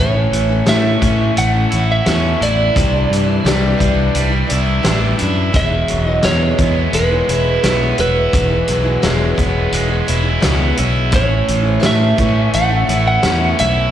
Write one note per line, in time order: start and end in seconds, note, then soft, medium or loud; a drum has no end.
0.00 0.25 A1 medium
0.00 0.15 A2 medium
0.00 0.15 E3 medium
0.00 0.16 A3 medium
0.00 0.15 C#4 medium
0.00 0.13 E4 medium
0.00 0.70 C#5 medium
0.14 0.51 A3 soft
0.14 0.50 C#4 soft
0.14 0.48 E4 soft
0.32 0.61 A1 medium
0.32 3.12 E3 medium
0.32 closed hi-hat medium
0.49 0.65 A3 soft
0.49 0.67 C#4 soft
0.49 0.67 E4 medium
0.66 1.02 A2 medium
0.66 0.95 A2 medium
0.66 1.00 E3 medium
0.66 1.02 A3 medium
0.66 1.02 C#4 medium
0.66 1.03 E4 medium
0.66 1.38 E5 medium
0.66 snare loud
0.66 closed hi-hat medium
1.02 1.30 A2 medium
1.02 1.54 E3 medium
1.02 1.55 A3 medium
1.02 1.54 C#4 medium
1.02 1.53 E4 medium
1.02 kick medium
1.02 closed hi-hat medium
1.37 1.65 A1 medium
1.37 2.76 A3 medium
1.37 1.91 F#5 loud
1.37 closed hi-hat medium
1.54 1.72 A3 soft
1.54 1.72 C#4 soft
1.54 1.72 E4 medium
1.71 2.00 A1 medium
1.71 2.06 E3 soft
1.71 2.07 A3 medium
1.71 2.07 C#4 medium
1.71 2.40 E4 medium
1.71 closed hi-hat medium
1.75 2.08 E4 medium
1.92 2.44 E5 loud
2.06 2.35 E2 medium
2.06 2.42 A2 medium
2.06 2.40 E3 medium
2.06 2.41 A3 medium
2.06 2.42 C#4 medium
2.06 2.43 E4 medium
2.06 snare loud
2.06 closed hi-hat medium
2.41 2.69 A1 medium
2.41 2.75 E3 medium
2.41 2.76 A3 medium
2.41 2.77 E4 medium
2.41 4.47 D5 medium
2.41 closed hi-hat medium
2.75 3.04 C2 medium
2.75 2.93 C3 medium
2.75 2.94 E3 medium
2.75 2.94 G3 medium
2.75 2.93 D4 medium
2.75 2.92 E4 medium
2.75 kick loud
2.75 closed hi-hat medium
2.93 3.30 G3 soft
2.93 3.28 D4 soft
2.93 3.26 E4 medium
3.11 3.38 G2 medium
3.11 4.89 E3 medium
3.11 closed hi-hat medium
3.27 3.45 G3 soft
3.27 3.45 D4 medium
3.27 3.45 E4 medium
3.45 3.73 C2 medium
3.45 3.80 C3 medium
3.45 3.77 E3 medium
3.45 3.77 G3 loud
3.45 3.79 D4 medium
3.45 3.80 E4 loud
3.45 snare loud
3.45 closed hi-hat medium
3.78 4.08 C2 medium
3.78 4.31 E3 medium
3.78 4.32 G3 medium
3.78 4.31 D4 medium
3.78 4.28 E4 medium
3.78 kick medium
3.78 closed hi-hat medium
4.15 4.43 C2 medium
4.15 5.55 G3 medium
4.15 closed hi-hat medium
4.30 4.46 G3 soft
4.30 4.48 D4 soft
4.30 4.49 E4 medium
4.47 4.82 E3 medium
4.47 4.83 G3 medium
4.47 4.83 D4 medium
4.47 4.83 E4 medium
4.47 closed hi-hat medium
4.51 4.78 C2 medium
4.83 5.13 A1 medium
4.83 5.19 C3 medium
4.83 5.16 E3 medium
4.83 5.19 G3 medium
4.83 5.19 D4 medium
4.83 5.19 E4 medium
4.83 snare loud
4.83 closed hi-hat medium
5.17 5.53 E3 medium
5.17 5.54 D4 medium
5.17 5.53 E4 medium
5.17 closed hi-hat medium
5.22 5.49 F#2 medium
5.52 5.82 E1 medium
5.52 5.71 E2 medium
5.52 5.71 B2 medium
5.52 5.71 F#3 medium
5.52 5.72 G#3 medium
5.52 5.71 B3 medium
5.52 5.69 E4 medium
5.52 kick loud
5.52 closed hi-hat medium
5.56 6.06 E5 loud
5.71 6.08 F#3 soft
5.71 6.07 G#3 soft
5.71 6.06 B3 soft
5.71 6.05 E4 medium
5.88 6.18 E1 medium
5.88 7.64 F#3 medium
5.88 closed hi-hat medium
6.06 6.24 F#3 soft
6.06 6.24 G#3 soft
6.06 6.25 B3 soft
6.06 6.24 E4 medium
6.06 6.27 D#5 loud
6.23 6.59 E2 medium
6.23 6.52 E2 medium
6.23 6.59 B2 medium
6.23 6.57 F#3 medium
6.23 6.58 G#3 medium
6.23 6.59 B3 medium
6.23 6.60 E4 medium
6.23 6.94 C#5 medium
6.23 snare medium
6.23 closed hi-hat medium
6.58 6.87 E2 medium
6.58 7.11 F#3 medium
6.58 7.12 G#3 medium
6.58 7.12 B3 medium
6.58 7.10 E4 medium
6.58 kick medium
6.58 closed hi-hat medium
6.93 7.21 E1 medium
6.93 8.69 G#3 medium
6.93 7.99 B4 medium
6.93 closed hi-hat medium
7.11 7.27 F#3 soft
7.11 7.28 G#3 soft
7.11 7.29 B3 soft
7.11 7.29 E4 medium
7.28 7.57 E1 medium
7.28 7.63 F#3 medium
7.28 7.64 G#3 medium
7.28 7.64 B3 medium
7.28 7.64 E4 medium
7.28 closed hi-hat medium
7.63 7.92 B1 medium
7.63 7.98 E2 medium
7.63 7.99 B2 medium
7.63 7.96 F#3 medium
7.63 7.97 G#3 medium
7.63 7.99 B3 medium
7.63 8.00 E4 medium
7.63 snare loud
7.63 closed hi-hat medium
7.98 8.27 E1 medium
7.98 8.33 F#3 medium
7.98 8.34 G#3 medium
7.98 8.34 B3 medium
7.98 8.35 E4 medium
7.98 10.06 B4 medium
7.98 closed hi-hat medium
8.33 8.61 E1 medium
8.33 8.51 E2 medium
8.33 8.52 B2 medium
8.33 8.52 F#3 medium
8.33 8.51 G#3 medium
8.33 8.50 B3 medium
8.33 8.49 E4 medium
8.33 kick loud
8.33 closed hi-hat medium
8.50 8.86 F#3 soft
8.50 8.85 G#3 soft
8.50 8.84 B3 soft
8.50 8.82 E4 medium
8.68 8.97 B1 medium
8.68 10.45 F#3 medium
8.68 closed hi-hat medium
8.84 9.01 F#3 soft
8.84 9.02 G#3 medium
8.84 9.02 B3 medium
8.84 9.02 E4 medium
9.02 9.32 E1 medium
9.02 9.38 E2 medium
9.02 9.38 B2 medium
9.02 9.35 F#3 medium
9.02 9.37 G#3 loud
9.02 9.37 B3 medium
9.02 9.38 E4 medium
9.02 snare loud
9.02 closed hi-hat medium
9.36 9.66 E1 medium
9.36 9.89 F#3 medium
9.36 9.89 G#3 medium
9.36 9.88 B3 medium
9.36 9.86 E4 medium
9.36 kick medium
9.36 closed hi-hat medium
9.72 10.01 E1 medium
9.72 11.14 G#3 medium
9.72 closed hi-hat medium
9.88 10.05 F#3 soft
9.88 10.06 G#3 soft
9.88 10.07 B3 soft
9.88 10.07 E4 medium
10.06 10.37 E1 medium
10.06 10.25 F#3 medium
10.06 10.24 G#3 medium
10.06 10.23 B3 medium
10.06 10.22 E4 medium
10.06 closed hi-hat medium
10.23 10.40 F#3 soft
10.23 10.41 G#3 soft
10.23 10.41 B3 soft
10.23 10.42 E4 medium
10.40 10.72 C#2 medium
10.40 10.77 E2 medium
10.40 10.77 B2 medium
10.40 10.76 F#3 medium
10.40 10.77 G#3 medium
10.40 10.77 B3 medium
10.40 10.78 E4 medium
10.40 snare loud
10.40 closed hi-hat medium
10.77 11.13 B1 medium
10.77 11.11 F#3 medium
10.77 11.12 G#3 medium
10.77 11.12 B3 medium
10.77 11.11 E4 medium
10.77 closed hi-hat medium
11.11 11.41 A1 medium
11.11 11.30 A2 medium
11.11 11.30 E3 medium
11.11 11.29 A3 medium
11.11 11.28 C#4 medium
11.11 11.25 E4 medium
11.11 kick loud
11.11 closed hi-hat medium
11.16 11.87 C#5 medium
11.27 11.64 A3 soft
11.27 11.63 C#4 soft
11.27 11.60 E4 soft
11.48 11.77 A1 medium
11.48 13.25 E3 medium
11.48 closed hi-hat medium
11.62 11.79 A3 soft
11.62 11.80 C#4 soft
11.62 11.81 E4 soft
11.80 12.17 A2 medium
11.80 12.15 E3 medium
11.80 12.16 A3 medium
11.80 12.16 C#4 medium
11.80 12.17 E4 medium
11.80 snare loud
11.80 closed hi-hat medium
11.84 12.12 A2 medium
11.84 12.52 E5 loud
12.16 12.47 A2 medium
12.16 12.71 E3 medium
12.16 12.71 A3 medium
12.16 12.70 C#4 medium
12.16 12.68 E4 medium
12.16 kick medium
12.16 closed hi-hat medium
12.54 12.83 A1 medium
12.54 13.91 A3 medium
12.54 13.04 F#5 loud
12.54 closed hi-hat medium
12.69 12.86 A3 soft
12.69 12.87 C#4 soft
12.69 12.88 E4 soft
12.86 13.17 A1 medium
12.86 13.22 E3 medium
12.86 13.22 A3 medium
12.86 13.23 C#4 soft
12.86 13.23 E4 medium
12.86 closed hi-hat medium
13.08 13.62 F#5 medium
13.22 13.53 E2 medium
13.22 13.59 A2 medium
13.22 13.57 E3 medium
13.22 13.57 A3 medium
13.22 13.59 C#4 medium
13.22 13.60 E4 medium
13.22 snare loud
13.22 closed hi-hat medium
13.58 13.89 B1 medium
13.58 13.91 E3 medium
13.58 13.91 A3 medium
13.58 13.91 C#4 medium
13.58 13.91 E4 medium
13.58 13.91 E5 medium
13.58 closed hi-hat medium